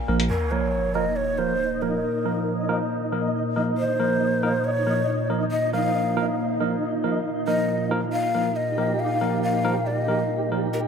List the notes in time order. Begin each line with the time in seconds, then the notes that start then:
Already playing: A#2
0.08 A#1 F3 A#3 A#4
0.20 closed hi-hat
0.30 A#2 D#4 A#4 D#5, crash, sub drop
0.51 F3 A#3 A#4 C#5
0.95 F3 A#3 A#4 D#5
1.16 C#5
1.38 F3 A#3 A#4 C5
1.82 F3 A#3 A#4
2.25 F3 A#3 A#4
2.69 F3 A#3 A#4
3.12 F3 A#3 A#4
3.56 F3 A#3 A#4
3.78 C5
4.00 F3 A#3 A#4
4.43 F3 A#3 A#4
4.65 C#5
4.87 F3 A#3 A#4
5.30 F3 A#3 A#4
5.51 D#5
5.73 F3 A#3 A#4 F5
6.17 F3 A#3 A#4
6.61 F3 A#3 A#4
7.04 F3 A#3 A#4
7.26 G4
7.47 F3 A#3 A#4 D#5
7.91 F3 A#3 A#4
8.13 F5
8.35 F3 A#3 A#4
8.56 D#5
8.78 F3 A#3 A#4
8.99 F5
9.21 F3 A#3 A#4
9.43 F5
9.65 F3 A#3 A#4
9.87 D5
9.98 D#5
10.08 F3 A#3 A#4
10.52 F3 A#3 A#4
10.73 A#4